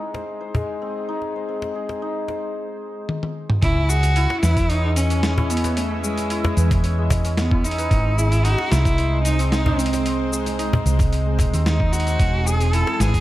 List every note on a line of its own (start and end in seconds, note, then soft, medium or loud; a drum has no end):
0.00 2.55 G#3 medium
0.00 0.81 C4 medium
0.00 1.08 D#4 medium
0.00 2.55 D#4 medium
0.00 1.75 G#4 medium
0.05 2.55 G#4 medium
0.14 0.40 C5 medium
0.14 cajon slap medium
0.41 1.35 C5 medium
0.55 3.67 G#3 medium
0.55 cajon bass medium
0.82 1.48 C4 medium
1.09 2.02 D#4 medium
1.22 cajon slap soft
1.27 2.55 C5 medium
1.36 2.28 C5 medium
1.49 3.69 C4 medium
1.62 cajon slap medium
1.75 3.89 G#4 medium
1.89 cajon slap medium
2.02 4.22 D#4 medium
2.28 3.69 C5 medium
2.28 cajon slap medium
3.09 high tom medium
3.23 high tom medium
3.50 mid tom medium
3.62 4.26 C#2 loud
3.62 7.91 C#4 medium
3.62 5.10 C#4 medium
3.62 3.91 E4 loud
3.62 kick loud
3.62 open hi-hat medium
3.62 shaker soft
3.89 4.42 F#4 loud
3.89 6.03 G#4 medium
3.89 shaker medium
4.03 cajon slap soft
4.03 open hi-hat soft
4.03 shaker soft
4.16 5.37 E4 loud
4.16 open hi-hat medium
4.16 shaker soft
4.30 8.79 D#5 medium
4.30 cajon slap medium
4.42 6.53 E2 medium
4.42 4.71 E4 loud
4.42 5.64 B4 medium
4.42 snare medium
4.42 open hi-hat soft
4.42 shaker medium
4.57 kick loud
4.57 open hi-hat soft
4.57 shaker soft
4.69 4.95 D#4 loud
4.69 6.83 C#5 medium
4.69 open hi-hat medium
4.69 shaker soft
4.84 6.97 G#3 medium
4.91 7.91 E5 medium
4.96 5.51 C#4 loud
4.96 open hi-hat medium
4.96 shaker medium
5.10 5.76 C#4 loud
5.10 open hi-hat soft
5.10 shaker soft
5.23 snare medium
5.23 open hi-hat soft
5.23 shaker soft
5.37 6.30 E4 loud
5.37 cajon bass medium
5.50 5.78 B3 medium
5.50 open hi-hat soft
5.50 shaker medium
5.57 open hi-hat medium
5.64 6.57 B4 medium
5.64 cajon slap medium
5.64 open hi-hat soft
5.64 shaker soft
5.77 6.03 A3 loud
5.77 7.24 C#4 medium
5.77 open hi-hat medium
5.77 shaker soft
6.03 7.07 G#3 medium
6.03 8.17 G#4 medium
6.03 shaker medium
6.18 cajon slap soft
6.18 open hi-hat soft
6.18 shaker soft
6.30 7.51 E4 loud
6.30 open hi-hat medium
6.30 shaker soft
6.44 cajon bass medium
6.44 cajon slap medium
6.57 7.87 E2 medium
6.57 7.78 B4 medium
6.57 open hi-hat soft
6.57 shaker medium
6.71 kick loud
6.71 cajon bass medium
6.71 open hi-hat soft
6.71 shaker soft
6.84 7.97 C#5 medium
6.84 open hi-hat medium
6.84 shaker soft
6.98 7.96 G#3 medium
7.10 cajon bass loud
7.10 kick medium
7.10 open hi-hat medium
7.10 shaker medium
7.25 7.97 C#4 medium
7.25 open hi-hat soft
7.25 shaker soft
7.37 7.66 B3 medium
7.37 snare medium
7.37 cajon slap medium
7.37 open hi-hat soft
7.37 shaker soft
7.51 8.50 E4 loud
7.51 kick loud
7.64 8.20 D#4 loud
7.64 open hi-hat soft
7.64 shaker medium
7.71 open hi-hat soft
7.78 7.97 B4 medium
7.78 open hi-hat soft
7.78 shaker soft
7.91 8.54 G#1 loud
7.91 12.20 G#3 medium
7.91 9.38 C4 medium
7.91 kick loud
7.91 open hi-hat medium
7.91 shaker soft
8.18 8.46 E4 loud
8.18 10.32 G#4 medium
8.18 shaker medium
8.29 13.16 C4 medium
8.29 cajon slap soft
8.29 open hi-hat soft
8.29 shaker soft
8.44 9.65 D#4 loud
8.44 8.73 F#4 loud
8.44 open hi-hat medium
8.44 shaker soft
8.56 12.20 C5 medium
8.56 cajon slap medium
8.71 10.82 C2 medium
8.71 9.24 E4 loud
8.71 8.98 C5 medium
8.71 snare medium
8.71 open hi-hat soft
8.71 shaker medium
8.85 kick loud
8.85 open hi-hat soft
8.85 shaker soft
8.98 9.92 C5 medium
8.98 open hi-hat medium
8.98 shaker soft
9.12 11.25 G#3 medium
9.25 9.50 D#4 loud
9.25 open hi-hat medium
9.25 shaker medium
9.39 10.05 C4 medium
9.39 open hi-hat soft
9.39 shaker soft
9.51 9.80 D#4 medium
9.51 snare medium
9.51 open hi-hat soft
9.51 shaker soft
9.66 10.58 D#4 loud
9.66 cajon bass medium
9.78 10.32 C4 medium
9.78 open hi-hat soft
9.78 shaker medium
9.86 open hi-hat medium
9.93 10.85 C5 medium
9.93 cajon slap medium
9.93 open hi-hat soft
9.93 shaker soft
10.05 11.53 C4 medium
10.05 open hi-hat medium
10.05 shaker soft
10.32 12.46 G#4 medium
10.32 shaker medium
10.46 cajon slap soft
10.46 open hi-hat soft
10.46 shaker soft
10.59 11.80 D#4 loud
10.59 open hi-hat soft
10.59 shaker soft
10.73 cajon bass medium
10.73 cajon slap medium
10.86 11.53 C2 medium
10.86 11.12 C5 medium
10.86 open hi-hat soft
10.86 shaker medium
10.99 cajon bass medium
10.99 kick loud
10.99 open hi-hat soft
10.99 shaker soft
11.12 12.07 C5 medium
11.12 open hi-hat medium
11.12 shaker soft
11.27 12.25 G#3 medium
11.39 cajon bass medium
11.39 kick medium
11.39 open hi-hat medium
11.39 shaker medium
11.53 12.16 D#2 medium
11.53 12.26 C4 loud
11.53 open hi-hat soft
11.53 shaker soft
11.66 11.94 D#4 medium
11.66 cajon slap medium
11.66 snare medium
11.66 open hi-hat soft
11.66 shaker soft
11.80 12.79 D#4 medium
11.80 kick loud
11.93 12.48 F#4 loud
11.93 open hi-hat soft
11.93 shaker medium
12.00 open hi-hat soft
12.07 12.26 C5 medium
12.07 open hi-hat soft
12.07 shaker soft
12.20 12.83 E1 loud
12.20 13.20 E3 medium
12.20 13.20 C#4 medium
12.20 kick loud
12.20 open hi-hat medium
12.20 shaker soft
12.46 13.20 G#4 medium
12.46 12.75 G#4 loud
12.46 shaker medium
12.61 cajon slap soft
12.61 open hi-hat soft
12.61 shaker soft
12.73 13.20 E4 loud
12.73 12.93 A4 loud
12.73 open hi-hat medium
12.73 shaker soft
12.80 13.20 B3 medium
12.87 cajon slap medium
12.93 13.02 A4 medium
13.00 13.20 G#1 medium
13.00 13.20 G#4 loud
13.00 13.20 B4 medium
13.00 snare medium
13.00 open hi-hat soft
13.00 shaker medium
13.14 kick loud
13.14 open hi-hat soft
13.14 shaker soft